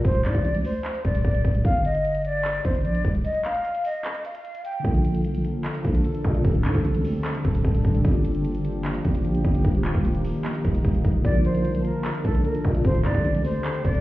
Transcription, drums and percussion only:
0.05 kick loud
0.05 closed hi-hat medium
0.15 closed hi-hat soft
0.25 clap medium
0.25 closed hi-hat medium
0.35 kick loud
0.35 closed hi-hat medium
0.45 closed hi-hat medium
0.55 closed hi-hat medium
0.65 open hi-hat medium
0.85 clap loud
0.85 closed hi-hat medium
0.95 closed hi-hat medium
1.05 kick medium
1.05 closed hi-hat medium
1.15 closed hi-hat medium
1.25 kick loud
1.25 closed hi-hat medium
1.35 closed hi-hat medium
1.45 kick loud
1.45 closed hi-hat medium
1.55 closed hi-hat medium
1.65 kick loud
1.65 closed hi-hat medium
1.75 closed hi-hat soft
1.85 closed hi-hat medium
1.95 closed hi-hat medium
2.05 closed hi-hat medium
2.15 closed hi-hat medium
2.25 closed hi-hat medium
2.45 clap loud
2.45 closed hi-hat medium
2.55 closed hi-hat medium
2.65 kick medium
2.65 closed hi-hat medium
2.75 closed hi-hat medium
2.85 closed hi-hat medium
2.95 closed hi-hat medium
3.05 kick loud
3.05 closed hi-hat medium
3.15 closed hi-hat medium
3.25 closed hi-hat medium
3.35 closed hi-hat soft
3.45 clap medium
3.45 closed hi-hat medium
3.55 closed hi-hat medium
3.65 closed hi-hat medium
3.75 closed hi-hat medium
3.85 open hi-hat medium
4.05 clap loud
4.05 closed hi-hat medium
4.15 closed hi-hat medium
4.25 closed hi-hat medium
4.35 closed hi-hat medium
4.45 closed hi-hat medium
4.55 closed hi-hat medium
4.65 closed hi-hat medium
4.85 kick loud
4.85 closed hi-hat medium
4.95 closed hi-hat soft
5.05 closed hi-hat medium
5.15 closed hi-hat medium
5.25 closed hi-hat medium
5.35 closed hi-hat medium
5.45 closed hi-hat medium
5.64 clap loud
5.64 closed hi-hat medium
5.75 closed hi-hat medium
5.85 kick medium
5.85 closed hi-hat medium
5.95 closed hi-hat medium
6.05 closed hi-hat medium
6.15 closed hi-hat medium
6.25 kick loud
6.25 closed hi-hat medium
6.35 closed hi-hat medium
6.45 kick loud
6.45 closed hi-hat medium
6.55 closed hi-hat soft
6.65 clap medium
6.65 closed hi-hat medium
6.75 kick medium
6.75 closed hi-hat medium
6.85 closed hi-hat medium
6.95 closed hi-hat medium
7.05 open hi-hat medium
7.25 clap loud
7.25 closed hi-hat medium
7.35 closed hi-hat medium
7.45 kick medium
7.45 closed hi-hat medium
7.55 closed hi-hat medium
7.65 kick loud
7.65 closed hi-hat medium
7.75 closed hi-hat medium
7.85 kick loud
7.85 closed hi-hat medium
7.95 closed hi-hat medium
8.05 kick loud
8.05 closed hi-hat medium
8.15 closed hi-hat soft
8.25 closed hi-hat medium
8.35 closed hi-hat medium
8.45 closed hi-hat medium
8.55 closed hi-hat medium
8.65 closed hi-hat medium
8.85 clap loud
8.85 closed hi-hat medium
8.95 closed hi-hat medium
9.05 kick medium
9.05 closed hi-hat medium
9.15 closed hi-hat medium
9.25 closed hi-hat medium
9.35 closed hi-hat medium
9.45 kick medium
9.45 closed hi-hat medium
9.55 closed hi-hat medium
9.65 kick loud
9.65 closed hi-hat medium
9.75 closed hi-hat soft
9.85 clap medium
9.85 closed hi-hat medium
9.95 kick loud
9.95 closed hi-hat medium
10.05 closed hi-hat medium
10.15 closed hi-hat medium
10.25 open hi-hat medium
10.45 clap loud
10.45 closed hi-hat medium
10.55 closed hi-hat medium
10.65 kick medium
10.65 closed hi-hat medium
10.75 closed hi-hat medium
10.85 kick loud
10.85 closed hi-hat medium
10.95 closed hi-hat medium
11.05 kick medium
11.05 closed hi-hat medium
11.25 kick loud
11.25 closed hi-hat medium
11.35 closed hi-hat soft
11.45 closed hi-hat medium
11.55 closed hi-hat medium
11.65 closed hi-hat medium
11.75 closed hi-hat medium
11.85 closed hi-hat medium
12.05 clap loud
12.05 closed hi-hat medium
12.15 closed hi-hat medium
12.25 kick medium
12.25 closed hi-hat medium
12.35 closed hi-hat medium
12.45 closed hi-hat medium
12.55 closed hi-hat medium
12.65 kick loud
12.65 closed hi-hat medium
12.75 closed hi-hat medium
12.85 kick loud
12.85 closed hi-hat medium
12.95 closed hi-hat soft
13.05 clap medium
13.05 closed hi-hat medium
13.15 kick loud
13.15 closed hi-hat medium
13.25 closed hi-hat medium
13.35 closed hi-hat medium
13.45 open hi-hat medium
13.64 clap loud
13.64 closed hi-hat medium
13.75 closed hi-hat medium
13.85 kick medium
13.85 closed hi-hat medium
13.95 closed hi-hat medium

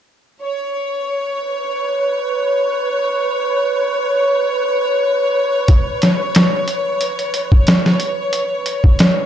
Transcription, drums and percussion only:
5.68 kick loud
5.68 closed hi-hat medium
6.02 snare medium
6.02 closed hi-hat medium
6.35 snare loud
6.35 closed hi-hat medium
6.68 closed hi-hat medium
7.01 closed hi-hat medium
7.19 closed hi-hat soft
7.34 closed hi-hat medium
7.52 kick medium
7.67 snare loud
7.67 closed hi-hat medium
7.86 snare soft
8.00 closed hi-hat medium
8.33 closed hi-hat medium
8.66 closed hi-hat medium
8.84 kick medium
8.99 snare loud
8.99 closed hi-hat medium

